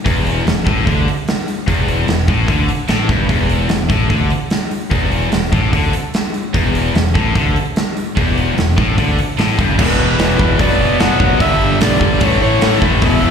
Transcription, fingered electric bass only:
0.06 0.44 E1 medium
0.46 0.65 E1 medium
0.67 0.85 A1 medium
0.87 1.06 D2 medium
1.68 2.06 E1 medium
2.08 2.27 E1 medium
2.28 2.47 A1 medium
2.48 2.67 D2 medium
2.89 3.08 A1 medium
3.09 3.28 G1 medium
3.29 3.67 E1 medium
3.70 3.89 E1 medium
3.90 4.09 A1 medium
4.10 4.29 D2 medium
4.92 5.29 E1 medium
5.33 5.51 E1 medium
5.53 5.72 A1 medium
5.73 5.92 D2 medium
6.55 6.92 E1 medium
6.95 7.14 E1 medium
7.15 7.34 A1 medium
7.36 7.54 D2 loud
8.17 8.55 E1 medium
8.57 8.76 E1 medium
8.78 8.96 A1 medium
8.98 9.17 D2 medium
9.38 9.57 A1 medium
9.59 9.77 G1 medium
9.79 9.97 E1 loud
10.00 10.17 E1 medium
10.19 10.37 E1 medium
10.40 10.57 E1 medium
10.60 10.77 F#1 loud
10.80 10.98 F#1 loud
11.00 11.18 F#1 medium
11.20 11.38 F#1 loud
11.40 11.58 G1 loud
11.61 11.78 G1 medium
11.81 11.99 B1 medium
12.01 12.19 G1 medium
12.21 12.39 A1 loud
12.42 12.60 A1 medium
12.62 12.80 A1 medium
12.82 13.00 A1 loud
13.03 13.20 E1 loud
13.22 13.31 E1 loud

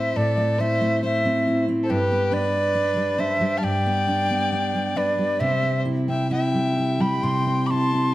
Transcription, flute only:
0.00 0.18 E5 medium
0.17 0.62 D5 medium
0.61 1.04 E5 medium
1.05 1.65 E5 medium
1.84 1.92 C5 medium
1.91 2.35 B4 medium
2.33 3.22 D5 medium
3.20 3.59 E5 medium
3.58 3.66 A5 medium
3.64 4.98 G5 loud
4.97 5.41 D5 medium
5.40 5.81 E5 medium
6.08 6.30 G5 medium
6.31 7.02 G5 medium
7.01 7.25 B5 medium
7.23 7.68 C6 medium
7.67 8.14 C6 medium
7.67 7.72 D6 soft

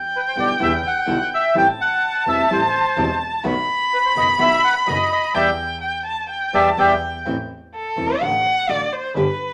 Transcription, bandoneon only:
0.16 0.21 B4 medium
0.28 0.33 C5 medium
0.40 0.50 D5 medium
0.63 0.73 E5 medium
0.87 1.30 F#5 medium
1.34 1.55 E5 medium
1.57 1.68 G5 loud
1.81 2.24 F#5 medium
2.29 2.50 E5 medium
2.53 3.18 C5 medium
3.94 3.99 B4 medium
4.06 4.11 C5 medium
4.18 4.28 D#5 medium
4.41 4.62 E5 medium
4.64 4.75 F#5 medium
4.87 5.10 D#5 loud
5.12 5.33 D#5 medium
5.35 5.50 D5 medium
5.35 5.50 E5 medium
5.35 5.50 G5 medium
6.55 6.69 D5 medium
6.55 6.69 E5 medium
6.55 6.70 G5 medium
6.79 6.94 D5 medium
6.79 6.94 E5 medium
6.79 6.94 G5 medium

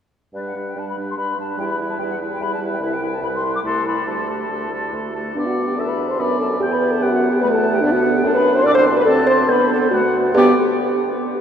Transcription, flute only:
0.35 0.39 D5 medium
0.46 0.71 F#5 soft
0.69 0.80 G5 soft
0.78 0.88 A5 medium
0.89 0.95 B5 medium
1.10 1.14 C6 medium
1.17 1.37 B5 medium
1.39 1.58 A5 medium
1.59 1.63 G5 medium
1.69 1.75 B5 medium
1.89 1.94 A5 medium
1.98 2.03 G5 medium
2.10 2.16 F#5 medium
2.32 2.43 G5 medium
2.42 2.51 B5 medium
2.53 2.59 A5 medium
2.73 2.77 G5 medium
2.82 2.94 E5 medium
2.93 3.15 G5 medium
3.13 3.22 A5 medium
3.23 3.27 B5 medium
3.35 3.54 C6 medium
3.55 3.59 D6 medium
3.65 3.85 C6 medium
3.86 4.06 B5 medium
4.07 4.92 A5 medium
5.36 5.46 D5 medium
5.47 5.70 F#5 medium
5.68 5.78 G5 soft
5.78 5.89 A5 medium
5.88 6.09 B5 medium
6.09 6.21 C6 medium
6.20 6.40 B5 medium
6.40 6.46 A5 medium
6.61 6.73 G5 medium
6.72 6.93 B5 medium
6.92 7.03 A5 medium
7.01 7.12 G5 medium
7.13 7.34 F#5 medium
7.33 7.42 G5 medium
7.42 7.47 B5 medium
7.53 7.75 A5 medium
7.74 7.83 G5 medium
7.85 7.89 D5 medium
7.96 8.18 F#5 medium
8.16 8.28 G5 medium
8.26 8.38 A5 medium
8.37 8.56 B5 medium
8.58 8.66 C6 medium
8.67 8.76 D6 loud
8.77 8.96 C6 medium
8.98 9.07 B5 medium
9.09 9.28 A5 loud
9.28 9.53 C6 medium
9.51 9.71 B5 loud
9.72 9.78 A5 loud
9.93 10.35 F#5 medium
10.37 10.60 G5 medium

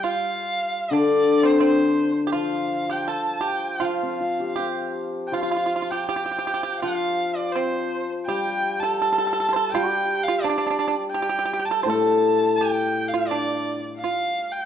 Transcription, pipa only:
0.04 0.88 F4 medium
0.93 1.43 D4 medium
1.43 1.59 C4 medium
1.60 2.13 C4 medium
2.27 2.32 G4 soft
2.32 2.85 F4 medium
2.90 3.07 G4 medium
3.08 3.40 A4 medium
3.41 3.77 G4 medium
3.80 4.53 F4 medium
4.56 4.92 G4 soft
5.34 5.41 F4 medium
5.43 5.49 F4 soft
5.51 5.56 F4 soft
5.57 5.64 F4 soft
5.66 5.72 F4 soft
5.76 5.81 F4 soft
5.82 5.88 F4 soft
5.92 6.08 G4 medium
6.09 6.15 G4 medium
6.16 6.23 G4 soft
6.26 6.30 G4 medium
6.32 6.37 G4 soft
6.39 6.45 G4 soft
6.47 6.53 G4 soft
6.54 6.61 G4 soft
6.63 6.81 G4 medium
6.82 7.51 F4 medium
7.56 8.06 C4 medium
8.29 8.79 G4 medium
8.83 9.00 A4 medium
9.02 9.08 A4 medium
9.13 9.17 A4 medium
9.18 9.24 A4 medium
9.27 9.32 A4 soft
9.33 9.39 A4 medium
9.40 9.46 A4 soft
9.49 9.52 A4 medium
9.49 9.56 C5 soft
9.56 9.73 A4 medium
9.75 10.24 G4 medium
10.28 10.44 F4 medium
10.44 10.48 D4 medium
10.49 10.57 D4 soft
10.58 10.65 D4 medium
10.67 10.69 D4 soft
10.67 10.78 D4 medium
10.79 10.86 D4 soft
10.88 10.94 D4 medium
11.14 11.21 G4 medium
11.22 11.28 G4 medium
11.29 11.36 G4 medium
11.39 11.44 G4 medium
11.45 11.51 G4 medium
11.53 11.58 G4 soft
11.59 11.66 G4 medium
11.71 11.80 A4 medium
11.83 11.88 C5 soft
11.90 12.55 A4 medium
12.61 13.10 G4 medium
13.14 13.29 F4 medium
13.31 13.80 D4 medium
14.04 14.65 F4 medium

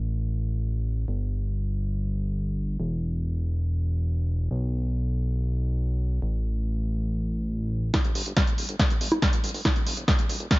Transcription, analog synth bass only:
0.00 1.06 A1 medium
1.08 2.77 G1 medium
2.80 4.49 E1 medium
4.51 6.20 B1 medium
6.22 7.92 A1 medium
8.05 8.12 G1 medium
8.15 8.22 G1 loud
8.26 8.33 G1 medium
8.47 8.54 G1 medium
8.58 8.65 D1 medium
8.69 8.76 G1 medium
8.90 8.97 G1 medium
9.01 9.08 G1 loud
9.12 9.19 G1 medium
9.33 9.40 G1 medium
9.44 9.51 G1 medium
9.54 9.62 G1 medium
9.76 9.83 E1 medium
9.87 9.94 E1 loud
9.97 10.04 E1 medium
10.19 10.26 E1 medium
10.29 10.37 D1 loud
10.40 10.47 E1 medium

